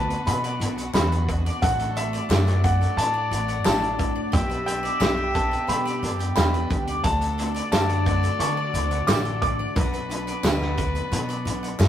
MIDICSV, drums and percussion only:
0, 0, Header, 1, 2, 480
1, 0, Start_track
1, 0, Key_signature, 2, "major"
1, 0, Tempo, 677966
1, 1147, Time_signature, 4, 2, 24, 8
1, 8413, End_track
2, 0, Start_track
2, 0, Title_t, "Drums"
2, 72, Note_on_c, 9, 42, 46
2, 142, Note_off_c, 9, 42, 0
2, 190, Note_on_c, 9, 42, 91
2, 261, Note_off_c, 9, 42, 0
2, 310, Note_on_c, 9, 42, 46
2, 381, Note_off_c, 9, 42, 0
2, 433, Note_on_c, 9, 42, 72
2, 504, Note_off_c, 9, 42, 0
2, 553, Note_on_c, 9, 42, 45
2, 623, Note_off_c, 9, 42, 0
2, 668, Note_on_c, 9, 39, 100
2, 672, Note_on_c, 9, 38, 120
2, 672, Note_on_c, 9, 42, 98
2, 674, Note_on_c, 9, 54, 92
2, 739, Note_off_c, 9, 39, 0
2, 743, Note_off_c, 9, 38, 0
2, 743, Note_off_c, 9, 42, 0
2, 744, Note_off_c, 9, 54, 0
2, 794, Note_on_c, 9, 42, 45
2, 865, Note_off_c, 9, 42, 0
2, 911, Note_on_c, 9, 36, 91
2, 912, Note_on_c, 9, 42, 68
2, 981, Note_off_c, 9, 36, 0
2, 982, Note_off_c, 9, 42, 0
2, 1034, Note_on_c, 9, 42, 45
2, 1105, Note_off_c, 9, 42, 0
2, 1151, Note_on_c, 9, 36, 116
2, 1153, Note_on_c, 9, 42, 98
2, 1222, Note_off_c, 9, 36, 0
2, 1224, Note_off_c, 9, 42, 0
2, 1271, Note_on_c, 9, 42, 46
2, 1342, Note_off_c, 9, 42, 0
2, 1391, Note_on_c, 9, 42, 69
2, 1462, Note_off_c, 9, 42, 0
2, 1515, Note_on_c, 9, 42, 45
2, 1585, Note_off_c, 9, 42, 0
2, 1628, Note_on_c, 9, 39, 99
2, 1632, Note_on_c, 9, 54, 96
2, 1635, Note_on_c, 9, 38, 112
2, 1635, Note_on_c, 9, 42, 88
2, 1699, Note_off_c, 9, 39, 0
2, 1703, Note_off_c, 9, 54, 0
2, 1706, Note_off_c, 9, 38, 0
2, 1706, Note_off_c, 9, 42, 0
2, 1754, Note_on_c, 9, 38, 36
2, 1754, Note_on_c, 9, 42, 43
2, 1824, Note_off_c, 9, 38, 0
2, 1824, Note_off_c, 9, 42, 0
2, 1871, Note_on_c, 9, 36, 99
2, 1874, Note_on_c, 9, 42, 69
2, 1941, Note_off_c, 9, 36, 0
2, 1945, Note_off_c, 9, 42, 0
2, 1997, Note_on_c, 9, 42, 45
2, 2068, Note_off_c, 9, 42, 0
2, 2111, Note_on_c, 9, 42, 94
2, 2182, Note_off_c, 9, 42, 0
2, 2354, Note_on_c, 9, 42, 65
2, 2425, Note_off_c, 9, 42, 0
2, 2469, Note_on_c, 9, 42, 41
2, 2539, Note_off_c, 9, 42, 0
2, 2585, Note_on_c, 9, 39, 104
2, 2588, Note_on_c, 9, 54, 99
2, 2589, Note_on_c, 9, 38, 120
2, 2589, Note_on_c, 9, 42, 86
2, 2656, Note_off_c, 9, 39, 0
2, 2658, Note_off_c, 9, 54, 0
2, 2660, Note_off_c, 9, 38, 0
2, 2660, Note_off_c, 9, 42, 0
2, 2714, Note_on_c, 9, 42, 40
2, 2785, Note_off_c, 9, 42, 0
2, 2828, Note_on_c, 9, 36, 98
2, 2830, Note_on_c, 9, 42, 66
2, 2899, Note_off_c, 9, 36, 0
2, 2900, Note_off_c, 9, 42, 0
2, 3068, Note_on_c, 9, 36, 126
2, 3070, Note_on_c, 9, 42, 89
2, 3139, Note_off_c, 9, 36, 0
2, 3141, Note_off_c, 9, 42, 0
2, 3191, Note_on_c, 9, 42, 43
2, 3261, Note_off_c, 9, 42, 0
2, 3310, Note_on_c, 9, 42, 69
2, 3381, Note_off_c, 9, 42, 0
2, 3432, Note_on_c, 9, 42, 44
2, 3503, Note_off_c, 9, 42, 0
2, 3542, Note_on_c, 9, 54, 102
2, 3545, Note_on_c, 9, 39, 94
2, 3551, Note_on_c, 9, 38, 114
2, 3551, Note_on_c, 9, 42, 84
2, 3612, Note_off_c, 9, 54, 0
2, 3616, Note_off_c, 9, 39, 0
2, 3622, Note_off_c, 9, 38, 0
2, 3622, Note_off_c, 9, 42, 0
2, 3789, Note_on_c, 9, 36, 94
2, 3791, Note_on_c, 9, 42, 73
2, 3860, Note_off_c, 9, 36, 0
2, 3862, Note_off_c, 9, 42, 0
2, 3915, Note_on_c, 9, 42, 44
2, 3986, Note_off_c, 9, 42, 0
2, 4029, Note_on_c, 9, 42, 94
2, 4099, Note_off_c, 9, 42, 0
2, 4154, Note_on_c, 9, 42, 43
2, 4225, Note_off_c, 9, 42, 0
2, 4274, Note_on_c, 9, 42, 70
2, 4345, Note_off_c, 9, 42, 0
2, 4391, Note_on_c, 9, 42, 47
2, 4461, Note_off_c, 9, 42, 0
2, 4504, Note_on_c, 9, 54, 107
2, 4506, Note_on_c, 9, 39, 97
2, 4511, Note_on_c, 9, 38, 122
2, 4511, Note_on_c, 9, 42, 96
2, 4575, Note_off_c, 9, 54, 0
2, 4577, Note_off_c, 9, 39, 0
2, 4582, Note_off_c, 9, 38, 0
2, 4582, Note_off_c, 9, 42, 0
2, 4629, Note_on_c, 9, 42, 40
2, 4700, Note_off_c, 9, 42, 0
2, 4748, Note_on_c, 9, 36, 95
2, 4749, Note_on_c, 9, 42, 70
2, 4819, Note_off_c, 9, 36, 0
2, 4819, Note_off_c, 9, 42, 0
2, 4866, Note_on_c, 9, 42, 46
2, 4937, Note_off_c, 9, 42, 0
2, 4983, Note_on_c, 9, 42, 92
2, 4987, Note_on_c, 9, 36, 120
2, 5054, Note_off_c, 9, 42, 0
2, 5058, Note_off_c, 9, 36, 0
2, 5108, Note_on_c, 9, 42, 48
2, 5179, Note_off_c, 9, 42, 0
2, 5230, Note_on_c, 9, 42, 72
2, 5301, Note_off_c, 9, 42, 0
2, 5350, Note_on_c, 9, 42, 47
2, 5421, Note_off_c, 9, 42, 0
2, 5469, Note_on_c, 9, 54, 106
2, 5471, Note_on_c, 9, 38, 122
2, 5471, Note_on_c, 9, 42, 84
2, 5473, Note_on_c, 9, 39, 92
2, 5540, Note_off_c, 9, 54, 0
2, 5542, Note_off_c, 9, 38, 0
2, 5542, Note_off_c, 9, 42, 0
2, 5544, Note_off_c, 9, 39, 0
2, 5589, Note_on_c, 9, 42, 46
2, 5660, Note_off_c, 9, 42, 0
2, 5709, Note_on_c, 9, 36, 91
2, 5711, Note_on_c, 9, 42, 74
2, 5780, Note_off_c, 9, 36, 0
2, 5781, Note_off_c, 9, 42, 0
2, 5831, Note_on_c, 9, 42, 46
2, 5902, Note_off_c, 9, 42, 0
2, 5947, Note_on_c, 9, 42, 91
2, 6018, Note_off_c, 9, 42, 0
2, 6192, Note_on_c, 9, 42, 68
2, 6262, Note_off_c, 9, 42, 0
2, 6308, Note_on_c, 9, 42, 40
2, 6379, Note_off_c, 9, 42, 0
2, 6430, Note_on_c, 9, 54, 106
2, 6431, Note_on_c, 9, 38, 121
2, 6431, Note_on_c, 9, 39, 97
2, 6431, Note_on_c, 9, 42, 86
2, 6501, Note_off_c, 9, 54, 0
2, 6502, Note_off_c, 9, 38, 0
2, 6502, Note_off_c, 9, 39, 0
2, 6502, Note_off_c, 9, 42, 0
2, 6549, Note_on_c, 9, 42, 41
2, 6619, Note_off_c, 9, 42, 0
2, 6669, Note_on_c, 9, 42, 65
2, 6670, Note_on_c, 9, 36, 95
2, 6740, Note_off_c, 9, 42, 0
2, 6741, Note_off_c, 9, 36, 0
2, 6912, Note_on_c, 9, 36, 124
2, 6914, Note_on_c, 9, 42, 87
2, 6983, Note_off_c, 9, 36, 0
2, 6984, Note_off_c, 9, 42, 0
2, 7035, Note_on_c, 9, 42, 41
2, 7105, Note_off_c, 9, 42, 0
2, 7157, Note_on_c, 9, 42, 69
2, 7228, Note_off_c, 9, 42, 0
2, 7275, Note_on_c, 9, 42, 43
2, 7346, Note_off_c, 9, 42, 0
2, 7387, Note_on_c, 9, 54, 104
2, 7393, Note_on_c, 9, 39, 94
2, 7395, Note_on_c, 9, 38, 112
2, 7395, Note_on_c, 9, 42, 85
2, 7457, Note_off_c, 9, 54, 0
2, 7464, Note_off_c, 9, 39, 0
2, 7466, Note_off_c, 9, 38, 0
2, 7466, Note_off_c, 9, 42, 0
2, 7518, Note_on_c, 9, 38, 37
2, 7588, Note_off_c, 9, 38, 0
2, 7634, Note_on_c, 9, 36, 95
2, 7634, Note_on_c, 9, 42, 68
2, 7705, Note_off_c, 9, 36, 0
2, 7705, Note_off_c, 9, 42, 0
2, 7756, Note_on_c, 9, 42, 43
2, 7827, Note_off_c, 9, 42, 0
2, 7877, Note_on_c, 9, 42, 95
2, 7948, Note_off_c, 9, 42, 0
2, 7997, Note_on_c, 9, 42, 42
2, 8068, Note_off_c, 9, 42, 0
2, 8119, Note_on_c, 9, 42, 69
2, 8190, Note_off_c, 9, 42, 0
2, 8240, Note_on_c, 9, 42, 43
2, 8311, Note_off_c, 9, 42, 0
2, 8351, Note_on_c, 9, 54, 97
2, 8352, Note_on_c, 9, 39, 99
2, 8356, Note_on_c, 9, 38, 121
2, 8356, Note_on_c, 9, 42, 86
2, 8413, Note_off_c, 9, 38, 0
2, 8413, Note_off_c, 9, 39, 0
2, 8413, Note_off_c, 9, 42, 0
2, 8413, Note_off_c, 9, 54, 0
2, 8413, End_track
0, 0, End_of_file